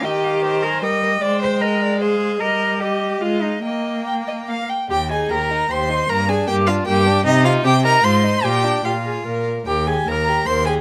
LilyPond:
<<
  \new Staff \with { instrumentName = "Violin" } { \time 3/4 \key ees \major \tempo 4 = 152 g''8 f''8 ees''8 aes''8 g''4~ | g''2 f''4 | ees''4 ees''4 f''4 | g''2 f''8 r8 |
g''8 aes''8 bes''4 c'''4 | bes''8 aes''8 g''8 f''8 g''4 | ees''8 f''8 g''8 bes''8 c'''4 | g''4 f''4. r8 |
g''8 aes''8 bes''4 c'''8 aes''8 | }
  \new Staff \with { instrumentName = "Viola" } { \time 3/4 \key ees \major ees2 g4 | aes2. | g2 aes4 | bes2 bes8 r8 |
g'8 aes'8 bes'4 c''4 | bes'8 aes'8 g'8 f'8 g'4 | ees'8 f'8 g'8 bes'8 c''4 | g'4 f'4. r8 |
g'8 aes'8 bes'4 c''8 aes'8 | }
  \new Staff \with { instrumentName = "Violin" } { \time 3/4 \key ees \major ees''4 c''4 bes'8 bes'8 | c''4 ees''8 d''8 c''4 | ees''4 ees''4 ees''4 | ees''4 g''8 ees''8 f''8 g''8 |
g'8 ees'8 g'8 ees'8 g'8 ees'8 | bes8 d'8 bes8 d'8 bes8 d'8 | c'8 ees'8 c'8 ees'8 f'8 ees'8 | f'8 d'8 g'8 aes'8 bes'4 |
bes'8 g'8 bes'8 g'8 bes'8 g'8 | }
  \new Staff \with { instrumentName = "Cello" } { \clef bass \time 3/4 \key ees \major g'4. bes'8 ees''4 | d''8 c''8 bes'4 aes'4 | bes'4 g'4 f'8 ees'8 | bes2~ bes8 r8 |
ees,4 ees,4 ees,4 | g,4 g,4 g,4 | c4 c4 aes,4 | bes,4 bes,4 bes,4 |
ees,4 ees,4 ees,4 | }
>>